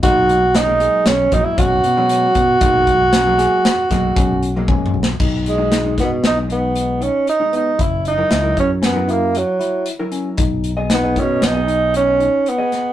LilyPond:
<<
  \new Staff \with { instrumentName = "Tine electric piano" } { \time 5/4 \key b \major \tempo 4 = 116 dis'4 cis'8 gis'4 fis'8 cis'4 cis'4 | dis'4 cis'8 gis'4 fis'8 cis'4 cis'4 | dis'4 dis'4 b8 dis'4 dis'4 b8 | e'4 e'4 cis'8 e'4 e'4 cis'8 |
dis'4 dis'4 b8 dis'4 dis'4 b8 | }
  \new Staff \with { instrumentName = "Tenor saxophone" } { \time 5/4 \key b \major fis'4 dis'4 cis'8 dis'16 e'16 fis'2~ | fis'1 r4 | r8 gis4 b8 dis'8 b4 cis'8 dis'8 dis'8 | e'8 dis'4 cis'8 b8 ais8 fis4 r4 |
r4 b8 cis'8 dis'4 cis'4 b4 | }
  \new Staff \with { instrumentName = "Hollow-body jazz guitar" } { \clef bass \time 5/4 \key b \major <b, fis gis ais>8. r8 <b, fis gis ais>8. r8 <b, fis gis ais>8. r8 <b, fis gis cis'>8. r8 | <b, fis gis ais>8. r8 <b, fis gis ais>8. r8 <b, fis gis ais>8. r8 <b, fis gis ais>8. r8 | r8. <b, gis dis'>16 r16 <b, gis dis'>8 r8 <b, gis dis'>4~ <b, gis dis'>16 r8. <b, gis dis'>8. | r8. <fis e' ais'>16 r16 <fis e' ais'>8 r8 <fis e' ais'>4~ <fis e' ais'>16 r8. <fis e' ais'>8. |
r8. <b gis' dis''>16 r16 <b gis' dis''>8 r8 <b gis' dis''>4~ <b gis' dis''>16 r8. <b gis' dis''>8. | }
  \new Staff \with { instrumentName = "Fingered electric bass" } { \clef bass \time 5/4 \key b \major b,,2 b,,8 ais,,16 r16 b,,8 b,4 b,8 | b,,2 r8 b,,8 b,,4. b,,8 | b,,4. b,8 b,,2 r4 | fis,,4 cis,8 fis,2 r4. |
b,,4. b,8 b,,2 r4 | }
  \new DrumStaff \with { instrumentName = "Drums" } \drummode { \time 5/4 <hh bd>8 hh8 <hh sn>8 hh8 <hh sn>8 <hh bd>8 <hh bd>8 hh8 hh8 <hh bd>8 | <hh bd>8 <hh bd>8 <hh sn>8 <hh sn>8 <hh sn>8 <hh bd sn>8 <hh bd>8 hh8 \tuplet 3/2 { <bd tommh>8 toml8 sn8 } | <cymc bd>8 hh8 <hh sn>8 <hh bd sn>8 <hh sn>8 hh8 hh8 hh8 hh8 hh8 | <hh bd>8 hh8 <hh sn>8 <hh bd>8 <hh sn>8 hh8 hh8 hh8 hh8 hh8 |
<hh bd>8 hh8 <hh sn>8 <hh bd>8 <hh sn>8 hh8 hh8 hh8 hh8 <hh sn>8 | }
>>